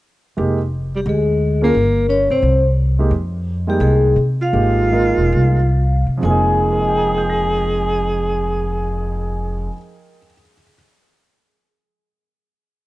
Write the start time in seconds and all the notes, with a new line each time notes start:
0.37 F1 G#3 A#3 D#4 G4
0.96 G3 G4
1.06 D2 G#3 G#4
1.62 A#3 C#4 F4 A#4
1.74 G1
2.09 C#4 C#5
2.30 C#2 C4 C5
2.42 C2
2.99 G#3 A#3 D#4 G4
3.11 F2
3.67 G3 G#3 A#3 D#4 G4 G5
3.80 C2 G#3 G#4
4.16 C3
4.42 F4 F5
4.53 G#1 G#3 A#3 D#4 G4
4.92 G#3 A#3 D#4 A#4
5.18 E1
5.32 C2
6.06 C3
6.18 F2 F3
6.22 F1 G#3 A#3 G#4 G#5
6.28 D#4 G#4
6.72 A#4
6.80 D#5
6.89 G5
6.97 A#5
7.07 D#6
7.18 G6
7.30 A#6